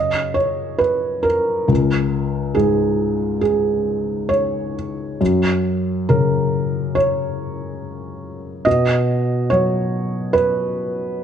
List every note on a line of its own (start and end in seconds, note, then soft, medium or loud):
0.00 1.65 F#2 soft
0.00 1.69 C#3 soft
0.00 0.35 D#5 medium
0.34 0.80 C#5 medium
0.78 1.24 B4 soft
1.23 2.56 A#4 medium
1.68 5.15 C#2 soft
2.55 5.20 G#2 soft
2.55 3.40 G#4 medium
3.41 4.29 G#4 medium
4.29 4.74 C#5 medium
5.21 8.62 F#2 soft
6.09 8.66 C#3 soft
6.09 6.95 A#4 medium
6.95 8.66 C#5 medium
8.65 11.24 B2 soft
8.65 9.51 D#5 medium
9.50 11.24 F#3 soft
9.50 10.34 C#5 medium
10.33 11.24 B4 medium